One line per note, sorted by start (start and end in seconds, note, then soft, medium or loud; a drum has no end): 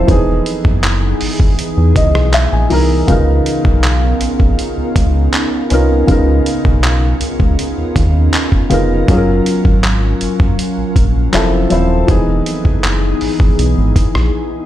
0.00 0.11 F3 medium
0.00 0.10 C4 medium
0.00 0.11 E4 medium
0.00 0.11 A4 loud
0.00 0.10 C5 medium
0.07 0.41 E1 loud
0.07 1.28 E3 medium
0.07 3.05 E3 medium
0.07 9.04 B3 medium
0.07 1.29 B3 medium
0.07 9.04 D#4 medium
0.07 1.29 D#4 medium
0.07 3.05 G#4 medium
0.07 1.30 G#4 medium
0.07 kick loud
0.07 closed hi-hat medium
0.46 closed hi-hat medium
0.65 1.14 F#1 medium
0.65 kick medium
0.83 clap loud
0.83 closed hi-hat medium
1.21 1.29 G#1 soft
1.21 open hi-hat medium
1.40 1.56 G#1 medium
1.40 kick medium
1.59 closed hi-hat medium
1.77 1.94 E2 loud
1.96 2.16 C#2 medium
1.96 2.31 D#5 medium
1.96 kick loud
1.96 closed hi-hat medium
2.15 2.48 B1 loud
2.15 cross-stick medium
2.33 2.51 E5 medium
2.33 clap loud
2.33 closed hi-hat medium
2.52 2.69 A#1 medium
2.52 2.70 G#5 medium
2.70 3.04 C2 medium
2.70 3.00 E3 medium
2.70 3.01 B3 medium
2.70 3.02 D#4 medium
2.70 3.02 A#4 medium
2.70 3.06 A#5 medium
2.70 open hi-hat medium
3.07 3.41 C#2 loud
3.07 4.28 C#3 medium
3.07 4.29 B3 medium
3.07 9.04 C#4 medium
3.07 4.29 D#4 medium
3.07 11.29 F4 medium
3.07 4.30 F4 medium
3.07 11.29 A#4 medium
3.07 4.30 A#4 medium
3.07 kick loud
3.07 closed hi-hat medium
3.46 closed hi-hat medium
3.65 4.14 B1 medium
3.65 kick medium
3.83 clap loud
3.83 closed hi-hat medium
4.21 4.29 A#1 medium
4.21 closed hi-hat medium
4.40 4.56 A#1 medium
4.40 kick medium
4.59 closed hi-hat medium
4.77 4.85 C#2 soft
4.96 5.29 C#2 medium
4.96 kick loud
4.96 closed hi-hat medium
5.33 clap loud
5.33 closed hi-hat medium
5.70 6.04 C2 medium
5.70 6.01 B3 medium
5.70 6.00 C#4 medium
5.70 6.01 D#4 medium
5.70 6.02 F4 medium
5.70 6.02 A#4 medium
5.70 closed hi-hat medium
6.07 6.41 C#2 loud
6.07 7.28 C#3 medium
6.07 7.29 B3 medium
6.07 7.29 D#4 medium
6.07 7.29 F4 medium
6.07 7.30 A#4 loud
6.07 kick loud
6.07 closed hi-hat medium
6.46 closed hi-hat medium
6.65 7.14 B1 medium
6.65 kick medium
6.83 clap loud
6.83 closed hi-hat medium
7.21 7.29 C#2 medium
7.21 closed hi-hat medium
7.40 7.56 C#2 loud
7.40 kick medium
7.59 closed hi-hat medium
7.78 7.85 D#2 medium
7.96 8.29 D#2 medium
7.96 kick loud
7.96 closed hi-hat medium
8.33 clap loud
8.33 closed hi-hat medium
8.52 kick medium
8.70 9.04 F1 medium
8.70 9.00 C#3 medium
8.70 9.01 B3 medium
8.70 9.01 D#4 medium
8.70 9.02 F4 medium
8.70 9.02 A#4 medium
8.70 closed hi-hat medium
9.07 9.41 F#1 loud
9.07 10.28 F#3 medium
9.07 11.31 F#3 medium
9.07 10.29 C#4 medium
9.07 11.31 C#4 medium
9.07 10.29 F4 medium
9.07 9.16 G#4 medium
9.07 kick loud
9.07 closed hi-hat medium
9.17 10.33 A#4 medium
9.46 closed hi-hat medium
9.65 10.14 G#1 medium
9.65 kick loud
9.83 clap loud
9.83 closed hi-hat medium
10.21 10.29 F#1 medium
10.21 closed hi-hat medium
10.40 10.56 F#1 medium
10.40 kick medium
10.59 closed hi-hat medium
10.78 10.85 A#1 soft
10.96 11.29 A#1 medium
10.96 kick loud
10.96 closed hi-hat medium
11.32 11.66 F1 loud
11.32 11.63 F3 medium
11.32 11.64 C4 medium
11.32 11.64 E4 medium
11.32 11.65 A4 loud
11.32 clap loud
11.32 closed hi-hat medium
11.70 12.04 D#1 loud
11.70 12.00 F3 medium
11.70 12.01 C4 medium
11.70 12.02 E4 medium
11.70 12.02 C5 medium
11.70 closed hi-hat medium
12.07 12.41 E1 loud
12.07 13.28 E3 medium
12.07 14.66 E3 medium
12.07 13.29 B3 medium
12.07 14.66 B3 medium
12.07 14.66 D#4 medium
12.07 13.29 D#4 medium
12.07 14.66 G#4 medium
12.07 13.30 G#4 medium
12.07 kick loud
12.07 closed hi-hat medium
12.46 closed hi-hat medium
12.65 13.14 F#1 medium
12.65 kick medium
12.83 clap loud
12.83 closed hi-hat medium
13.21 13.29 G#1 medium
13.21 open hi-hat medium
13.40 13.56 G#1 medium
13.40 kick medium
13.59 13.75 B1 loud
13.59 closed hi-hat medium
13.78 13.94 G#1 medium
13.96 kick loud
13.96 closed hi-hat medium
14.15 14.31 A#1 loud
14.15 cross-stick medium